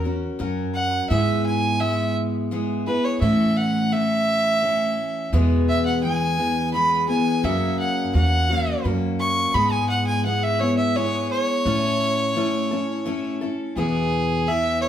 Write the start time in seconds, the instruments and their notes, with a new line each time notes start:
Already playing: upright bass E2
0.04 steel-string acoustic guitar C#4 F#4 A#4
0.39 upright bass F#2, steel-string acoustic guitar F#3 C#4 F#4 A#4
0.74 fiddle F#5
1.09 upright bass G#2, steel-string acoustic guitar G#3 B3 E4 G#4, fiddle E5
1.46 fiddle G#5
1.80 steel-string acoustic guitar G#3 B3 E4 G#4, fiddle E5
2.51 steel-string acoustic guitar G#3 B3 E4 G#4
2.86 steel-string acoustic guitar B3 E4 G#4, fiddle B4
3.04 fiddle C#5
3.21 steel-string acoustic guitar A2 E3 A3 C#4 A4, upright bass A2, fiddle E5
3.57 fiddle F#5
3.92 steel-string acoustic guitar E3 A3 C#4 A4, fiddle E5
4.62 steel-string acoustic guitar E3 A3 C#4 A4
5.33 upright bass E2, steel-string acoustic guitar E2 B2 E3 G#3 B3 G#4
5.69 fiddle E5
5.85 fiddle F#5
6.03 steel-string acoustic guitar E3 G#3 B3 G#4, fiddle G#5
6.38 steel-string acoustic guitar E3 G#3 B3 G#4
6.73 steel-string acoustic guitar E3 G#3 B3 G#4, fiddle B5
7.08 steel-string acoustic guitar E3 G#3 B3 G#4, fiddle G#5
7.44 steel-string acoustic guitar F#2 C#3 F#3 A#3 C#4 F#4, upright bass F#2, fiddle E5
7.79 fiddle F#5
8.14 upright bass E2, steel-string acoustic guitar F#3 A#3 C#4 F#4, fiddle F#5
8.49 steel-string acoustic guitar F#3 A#3 C#4 F#4
8.84 upright bass F#2, steel-string acoustic guitar F#3 A#3 C#4 F#4
9.19 fiddle C#6
9.54 upright bass G#2, steel-string acoustic guitar G#3 B3 E4 G#4, fiddle B5
9.72 fiddle G#5
9.89 fiddle F#5
10.07 fiddle G#5
10.25 steel-string acoustic guitar G#3 B3 E4 G#4, fiddle F#5
10.43 fiddle E5
10.60 steel-string acoustic guitar B3 E4 G#4, fiddle C#5
10.77 fiddle E5
10.96 steel-string acoustic guitar G#3 B3 E4 G#4, fiddle C#5
11.31 fiddle C#5
11.66 steel-string acoustic guitar A2 A3 C#4 E4 A4, upright bass A2
12.36 steel-string acoustic guitar A3 C#4 E4 A4
12.71 steel-string acoustic guitar C#4 E4 A4
13.05 steel-string acoustic guitar A3 C#4 E4 A4
13.41 steel-string acoustic guitar C#4 E4 A4
13.76 upright bass E2, steel-string acoustic guitar E2 B2 E3 B3 E4 G#4, fiddle G#4
14.47 steel-string acoustic guitar E3 B3 E4 G#4, fiddle E5
14.82 fiddle C#5